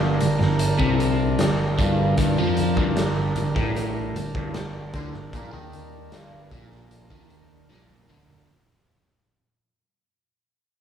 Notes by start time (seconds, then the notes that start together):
Already playing: G1 G2 G3 D4 A#4
0.02 high conga
0.20 G1 G2, closed hi-hat, low conga
0.39 G1 G2, snare, high conga
0.59 closed hi-hat, high conga
0.79 C2 C3, kick
1.00 closed hi-hat
1.39 G1 G2, snare, closed hi-hat, low conga
1.79 G1 G2, kick, closed hi-hat, low conga
2.17 G1 G2, kick, closed hi-hat
2.38 F2 F3
2.57 closed hi-hat, low conga
2.77 G1 G2, kick
2.95 G1 G2, snare, closed hi-hat
3.17 high conga
3.36 G1 G2, closed hi-hat, low conga
3.56 A1 A2, kick, snare, high conga
3.75 closed hi-hat, high conga
4.14 G1 G2, closed hi-hat
4.35 G1 G2, kick
4.54 G1 G2, snare, closed hi-hat, low conga
4.93 D2 D3, kick, closed hi-hat, low conga
5.13 G1 G2, snare
5.33 A#1 A#2, kick, closed hi-hat
5.53 D#2 D#3
5.72 closed hi-hat, low conga
6.11 G1 G2, snare, closed hi-hat
6.31 high conga
6.50 A#1 A#2, kick, closed hi-hat, low conga
6.69 snare, high conga
6.90 closed hi-hat, high conga
7.10 D#2 D#3, kick
7.30 closed hi-hat
7.67 A#1 A#2, snare, low conga
7.88 high tom, high conga
8.07 D2 D3, mid tom, low conga
8.28 floor tom, low conga